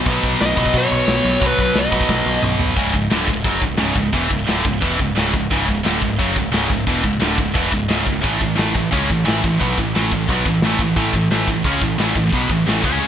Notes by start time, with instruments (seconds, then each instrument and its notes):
0.06 picked electric bass B1, distorted electric guitar B2 F#3, kick, crash
0.10 distorted electric guitar B3
0.23 picked electric bass B1, kick
0.40 picked electric bass B1, lead electric guitar D#5, snare, crash
0.56 picked electric bass B1, distorted electric guitar B2 F#3 B3, kick
0.66 kick
0.73 picked electric bass B2, kick, crash
0.78 lead electric guitar C#5
0.92 picked electric bass B1
1.07 picked electric bass B1, snare, crash
1.25 picked electric bass B1
1.40 picked electric bass B1, distorted electric guitar B2 F#3 B3, kick, crash
1.47 lead electric guitar B4
1.59 picked electric bass B1, kick
1.74 picked electric bass B1, snare, crash
1.79 lead electric guitar D#5
1.91 picked electric bass B1, distorted electric guitar B2 F#3 B3, kick
2.01 kick
2.09 picked electric bass B1, kick, snare
2.26 picked electric bass B1
2.42 picked electric bass B1, mid tom
2.59 picked electric bass B1, floor tom
2.76 picked electric bass C#1, distorted electric guitar C#2 G#2 C#3, kick, open hi-hat
2.93 picked electric bass C#1, distorted electric guitar C#2 G#2, kick, open hi-hat
3.10 picked electric bass D1, distorted electric guitar D2 A2 D3, snare, open hi-hat
3.27 picked electric bass C#1, distorted electric guitar C#2 G#2, kick, open hi-hat
3.44 picked electric bass F#1, distorted electric guitar F#2 C#3 F#3, kick, open hi-hat
3.61 picked electric bass C#1, distorted electric guitar C#2 G#2, kick, open hi-hat
3.77 picked electric bass C#1, distorted electric guitar C#2 G#2 C#3, snare, open hi-hat
3.95 picked electric bass C#1, distorted electric guitar C#2 G#2, kick, open hi-hat
4.12 picked electric bass E1, distorted electric guitar E2 B2 E3, kick, open hi-hat
4.29 picked electric bass C#1, distorted electric guitar C#2 G#2, kick, open hi-hat
4.47 picked electric bass D1, distorted electric guitar D2 A2 D3, snare, open hi-hat
4.64 picked electric bass C#1, distorted electric guitar C#2 G#2, kick, open hi-hat
4.81 picked electric bass E1, distorted electric guitar E2 B2 E3, kick, open hi-hat
4.99 picked electric bass C#1, distorted electric guitar C#2 G#2, kick, open hi-hat
5.16 picked electric bass C#1, distorted electric guitar C#2 G#2 C#3, snare, open hi-hat
5.33 picked electric bass C#1, distorted electric guitar C#2 G#2, kick, open hi-hat
5.51 picked electric bass C#1, distorted electric guitar C#2 G#2 C#3, kick, open hi-hat
5.66 picked electric bass C#1, distorted electric guitar C#2 G#2, kick, open hi-hat
5.84 picked electric bass D1, distorted electric guitar D2 A2 D3, snare, open hi-hat
6.01 picked electric bass C#1, distorted electric guitar C#2 G#2, kick, open hi-hat
6.18 picked electric bass F#1, distorted electric guitar F#2 C#3 F#3, kick, open hi-hat
6.36 picked electric bass C#1, distorted electric guitar C#2 G#2, kick, open hi-hat
6.52 picked electric bass C#1, distorted electric guitar C#2 G#2 C#3, snare, open hi-hat
6.70 picked electric bass C#1, distorted electric guitar C#2 G#2, kick, open hi-hat
6.87 picked electric bass E1, distorted electric guitar E2 B2 E3, kick, open hi-hat
7.04 picked electric bass C#1, distorted electric guitar C#2 G#2, kick, open hi-hat
7.20 picked electric bass D1, distorted electric guitar D2 A2 D3, snare, open hi-hat
7.37 picked electric bass C#1, distorted electric guitar C#2 G#2, kick, open hi-hat
7.54 picked electric bass E1, distorted electric guitar E2 B2 E3, kick, open hi-hat
7.71 picked electric bass C#1, distorted electric guitar C#2 G#2, kick, open hi-hat
7.88 picked electric bass C#1, distorted electric guitar C#2 G#2 C#3, snare, open hi-hat
8.06 picked electric bass C#1, distorted electric guitar C#2 G#2, kick, open hi-hat
8.21 picked electric bass A1, distorted electric guitar A2 E3 A3, kick, open hi-hat
8.39 picked electric bass A1, distorted electric guitar A2 E3, kick, open hi-hat
8.55 picked electric bass A1, distorted electric guitar A2 E3 A3, snare, open hi-hat
8.75 picked electric bass A1, distorted electric guitar A2 E3, kick, open hi-hat
8.91 picked electric bass C#2, distorted electric guitar C#3 G#3 C#4, kick, open hi-hat
9.10 picked electric bass A1, distorted electric guitar A2 E3, kick, open hi-hat
9.25 picked electric bass A1, distorted electric guitar A2 E3 A3, snare, open hi-hat
9.43 picked electric bass A1, distorted electric guitar A2 E3, kick, open hi-hat
9.60 picked electric bass B1, distorted electric guitar B2 F#3 B3, kick, open hi-hat
9.78 picked electric bass A1, distorted electric guitar A2 E3, kick, open hi-hat
9.95 picked electric bass A1, distorted electric guitar A2 E3 A3, snare, open hi-hat
10.12 picked electric bass A1, distorted electric guitar A2 E3, kick, open hi-hat
10.29 picked electric bass B1, distorted electric guitar B2 F#3 B3, kick, open hi-hat
10.45 picked electric bass A1, distorted electric guitar A2 E3, kick, open hi-hat
10.61 picked electric bass A1, distorted electric guitar A2 E3 A3, snare, open hi-hat
10.79 picked electric bass A1, distorted electric guitar A2 E3, kick, open hi-hat
10.96 picked electric bass A1, distorted electric guitar A2 E3 A3, kick, open hi-hat
11.13 picked electric bass A1, distorted electric guitar A2 E3, kick, open hi-hat
11.31 picked electric bass A1, distorted electric guitar A2 E3 A3, snare, open hi-hat
11.48 picked electric bass A1, distorted electric guitar A2 E3, kick, open hi-hat
11.64 picked electric bass C#2, distorted electric guitar C#3 G#3 C#4, kick, open hi-hat
11.82 picked electric bass A1, distorted electric guitar A2 E3, kick, open hi-hat
11.98 picked electric bass A1, distorted electric guitar A2 E3 A3, snare, open hi-hat
12.15 picked electric bass A1, distorted electric guitar A2 E3, kick, open hi-hat
12.32 picked electric bass B1, distorted electric guitar B2 F#3 B3, kick, open hi-hat
12.49 picked electric bass A1, distorted electric guitar A2 E3, kick, open hi-hat
12.66 picked electric bass A1, distorted electric guitar A2 E3 A3, snare, open hi-hat
12.84 picked electric bass C#2, distorted electric guitar C#3 G#3 C#4, kick, open hi-hat